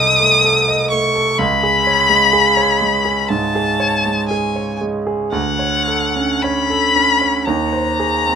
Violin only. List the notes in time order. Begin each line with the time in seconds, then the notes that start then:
Already playing: D#6
0.90 C#6
1.38 B5
3.29 A5
4.29 G#5
5.31 F#5
6.42 B5
7.45 A#5